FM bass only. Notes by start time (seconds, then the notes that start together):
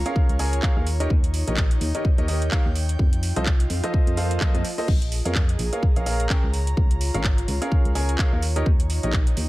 0.29 C#2
0.77 D#2
1.10 D#2
1.48 A#1
1.81 D#2
2.18 D#2
2.66 D#2
2.99 F2
3.37 C2
3.70 F2
4.07 F2
4.55 F2
4.88 A#1
5.25 F2
5.59 A#1
5.96 A#1
6.44 C#2
6.77 C#2
7.14 G#1
7.48 C#2
7.85 C#2
8.33 D#2
8.66 D#2
9.03 A#1
9.37 D#2